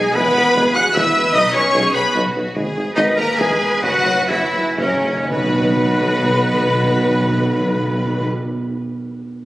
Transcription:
Already playing: french horn section G#3, cello section D#4, viola section G#4, violin section G#4 G#5, oboe G#4, flute G#5
0.04 double bass section B1
0.13 tuba E1, double bass section E2, french horn section B3, cello section E4, oboe B4, viola section B4, violin section B4 B5, flute B5
0.24 double bass section E2
0.35 tuba E1, double bass section E2
0.44 double bass section E2
0.55 tuba E1, double bass section E2, cello section G#4
0.64 double bass section E2
0.74 tuba E1, double bass section E2, french horn section F#4, violin section F#5 F#6, viola section F#5, oboe F#5, flute F#6
0.84 double bass section E2
0.94 tuba E1, double bass section E2, french horn section E4, cello section B4, oboe E5, viola section E5, violin section E5 E6, flute E6
1.04 double bass section E2
1.14 tuba E1, double bass section E2
1.23 double bass section E2
1.32 double bass section B1, tuba B1, timpani B2, french horn section D#4, viola section D#5, oboe D#5, violin section D#5 D#6, flute D#6
1.43 double bass section B1
1.53 double bass section B1, tuba B1, french horn section C#4, oboe C#5, viola section C#5, violin section C#5 C#6, flute C#6
1.64 double bass section B1
1.73 double bass section B1, tuba B1, cello section G#4
1.83 double bass section B1
1.94 tuba B1, double bass section B1, french horn section B3, viola section B4, oboe B4, violin section B4 B5, flute B5
2.05 double bass section B1
2.14 tuba B1, double bass section B1, cello section F#4
2.25 double bass section B1
2.35 double bass section B1, tuba B1
2.45 double bass section B1
2.55 double bass section G#1, tuba G#1, cello section G#4
2.65 double bass section G#1
2.75 double bass section G#1, tuba G#1
2.85 double bass section G#1
2.95 double bass section G#1, tuba G#1, french horn section D#3, oboe D#4, viola section D#4, violin section D#4 D#5, cello section B4, flute D#5
3.07 double bass section G#1
3.15 double bass section G#1, tuba G#1, french horn section A#3, oboe A#4, viola section A#4, violin section A#4 A#5
3.19 flute A#5
3.29 double bass section G#1
3.38 tuba E1, double bass section E2, french horn section G#3, viola section G#4, violin section G#4 G#5, oboe G#4, flute G#5
3.50 double bass section E2
3.59 tuba E1, double bass section E2
3.72 double bass section E2
3.82 tuba F#1, double bass section F#2, timpani F#2, french horn section F#3, violin section F#4 F#5, viola section F#4, oboe F#4, flute F#5
3.93 double bass section F#2
4.05 tuba F#1, double bass section F#2
4.17 double bass section F#2
4.28 tuba F#1, double bass section F#2, french horn section E3, violin section E4 E5, viola section E4, oboe E4, cello section F#4, flute E5
4.41 double bass section F#2
4.52 tuba F#1, double bass section F#2
4.65 double bass section F#2
4.77 tuba F#1, double bass section F#2, timpani F#2, french horn section C#3, viola section C#4, violin section C#4 C#5, oboe C#4, cello section A#4, flute C#5
4.87 timpani F#2, double bass section F#2
4.97 timpani F#2
5.04 tuba F#1, double bass section F#2, timpani F#2
5.17 timpani F#2, double bass section F#2
5.30 tuba B1, double bass section B1, cello section B2, timpani B2, french horn section B3, violin section B3 B4, oboe F#4, viola section B4, flute B5
5.38 timpani B2
5.46 timpani B2
5.54 timpani B2
5.62 timpani B2
5.69 timpani B2
5.77 timpani B2
5.84 timpani B2
5.92 timpani B2
5.99 timpani B2
6.07 timpani B2
6.14 timpani B2
6.22 timpani B2
6.30 timpani B2
6.37 timpani B2
6.45 timpani B2
6.52 timpani B2
6.60 timpani B2
6.68 timpani B2
6.75 timpani B2
6.82 timpani B2
6.90 timpani B2
6.98 timpani B2
7.05 timpani B2
7.13 timpani B2
7.21 timpani B2
7.29 timpani B2
7.37 timpani B2
7.44 timpani B2
7.52 timpani B2
7.60 timpani B2
7.68 timpani B2
7.75 timpani B2
7.83 timpani B2
7.90 timpani B2
7.98 timpani B2
8.05 timpani B2
8.13 timpani B2
8.20 timpani B2

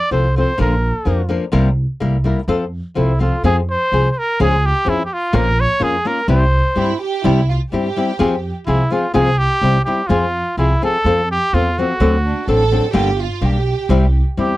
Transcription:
Already playing: trumpet D5
0.11 upright bass C2, nylon-string guitar F3 C4 F4 A4, trumpet C5
0.36 nylon-string guitar F3 C4 F4 A4, trumpet C5
0.58 upright bass A#1, nylon-string guitar A#2 D3 F3 A#3 D4 A#4, trumpet A#4
1.05 upright bass F2, nylon-string guitar F3 A#3 D4 A#4
1.29 nylon-string guitar F3 A#3 D4 A#4
1.52 upright bass C2, nylon-string guitar C3 G3 A#3 E4 A#4
2.00 upright bass C2, nylon-string guitar G3 A#3 E4 A#4
2.24 nylon-string guitar G3 A#3 E4 A#4
2.48 upright bass F2, nylon-string guitar F3 C4 F4 A4
2.95 upright bass C2, nylon-string guitar F3 C4 F4 A4, trumpet E4
3.19 nylon-string guitar F3 C4 F4 A4, trumpet F4
3.44 upright bass F2, nylon-string guitar F3 C4 F4 G#4, trumpet G#4
3.71 trumpet C5
3.92 upright bass C2, nylon-string guitar F3 C4 F4 G#4
4.11 trumpet C5
4.18 trumpet A#4
4.40 upright bass C#2, nylon-string guitar C#3 F3 C#4 F4 G#4, trumpet G#4
4.66 trumpet G4
4.85 upright bass F2, nylon-string guitar F3 C#4 F4 G#4
4.89 trumpet E4
5.05 trumpet G4
5.14 trumpet F4
5.33 upright bass A#1, nylon-string guitar A#2 F3 A#3 C#4 F4 A#4, trumpet A#4
5.61 trumpet C#5
5.80 upright bass F2, nylon-string guitar A#3 C#4 F4 A#4, trumpet G#4
6.05 nylon-string guitar A#3 C#4 F4 A#4, trumpet A#4
6.28 upright bass C2, nylon-string guitar C3 G3 C4 E4 G4, trumpet C5
6.76 upright bass G2, nylon-string guitar G3 C4 E4 G4, violin section E4
7.01 violin section G4
7.24 upright bass C2, nylon-string guitar C3 G3 C4 E4 G4, violin section E4
7.49 violin section F4
7.72 upright bass G2, nylon-string guitar G3 C4 E4 G4, violin section G4
7.96 nylon-string guitar G3 C4 E4 G4
8.19 upright bass F2, nylon-string guitar F3 C4 F4 G#4
8.67 upright bass C2, nylon-string guitar F3 C4 F4 G#4, trumpet E4
8.90 nylon-string guitar F3 C4 F4 G#4, trumpet F4
9.14 upright bass C2, nylon-string guitar C3 F3 C4 F4 G#4, trumpet G#4
9.38 trumpet G4
9.61 upright bass C2, nylon-string guitar G3 C4 E4 G4
9.85 nylon-string guitar G3 C4 E4 G4, trumpet G4
10.07 upright bass F2, nylon-string guitar F3 C4 F4 G#4, trumpet F4
10.57 upright bass C2, nylon-string guitar F3 C4 F4 G#4, trumpet E4
10.82 nylon-string guitar F3 C4 F4 G#4, trumpet A4
11.04 upright bass F2, nylon-string guitar F3 C4 F4 A4
11.32 trumpet G4
11.53 upright bass E2, nylon-string guitar F3 C4 F4 A4, trumpet F4
11.78 nylon-string guitar F3 C4 F4 A4, trumpet F#4
12.00 upright bass D2, nylon-string guitar D3 F#3 C4 D4 A4
12.24 violin section D4
12.47 upright bass A1, nylon-string guitar F#3 C4 D4 A4, violin section A4
12.71 nylon-string guitar F#3 C4 D4 A4
12.93 upright bass G1, nylon-string guitar G2 D3 G3 A#3 D4 G4, violin section G4
13.20 violin section F4
13.41 upright bass B1, nylon-string guitar G3 A#3 D4 G4, violin section G4
13.89 upright bass C2, nylon-string guitar C3 G3 C4 E4 G4
14.37 upright bass E2, nylon-string guitar G3 C4 E4 G4, trumpet G4

